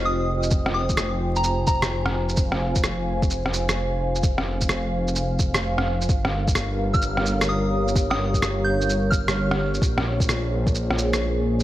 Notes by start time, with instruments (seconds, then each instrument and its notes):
Already playing: detuned saw bass F1, analog synth pad F4 G#4 C5 D#5 G5 G#5
0.05 synth bell D#6
0.43 shaker
0.51 kick, shaker
0.66 cross-stick
0.74 synth bell D#6
0.89 kick, shaker
0.97 cross-stick, shaker
1.36 synth bell A#5, shaker
1.44 shaker
1.67 synth bell A#5, kick, shaker
1.82 cross-stick, shaker
2.06 cross-stick
2.11 analog synth pad F5
2.29 shaker
2.37 kick, shaker
2.52 cross-stick
2.75 kick, shaker
2.84 cross-stick, shaker
3.22 kick, shaker
3.30 shaker
3.41 analog synth pad F5
3.46 cross-stick
3.54 shaker
3.69 cross-stick, shaker
4.15 shaker
4.23 kick, shaker
4.38 cross-stick
4.61 kick, shaker
4.69 cross-stick, shaker
5.08 shaker
5.16 shaker
5.39 kick, shaker
5.54 cross-stick, shaker
5.78 cross-stick
6.01 shaker
6.09 detuned saw bass G1, analog synth pad G3, kick, shaker
6.21 analog synth pad G4 A#4, cross-stick
6.48 analog synth pad C#5, kick, shaker
6.55 cross-stick, shaker
6.94 synth bell F6, kick, shaker
7.02 shaker
7.17 cross-stick
7.26 shaker
7.41 cross-stick, shaker
7.49 synth bell D#6
7.88 shaker
7.96 kick, shaker
8.10 synth bell D#6, cross-stick
8.34 kick, shaker
8.42 cross-stick, shaker
8.64 synth bell G6
8.81 shaker
8.89 shaker
9.10 synth bell F6, kick, shaker
9.28 cross-stick, shaker
9.51 cross-stick
9.74 shaker
9.82 detuned saw bass A#1, analog synth pad A#3, kick, shaker
9.98 cross-stick
10.02 analog synth pad F4 G#4
10.20 kick, shaker
10.29 cross-stick, shaker
10.36 analog synth pad C5
10.67 kick, shaker
10.75 shaker
10.90 cross-stick
10.98 shaker
11.13 cross-stick, shaker
11.60 shaker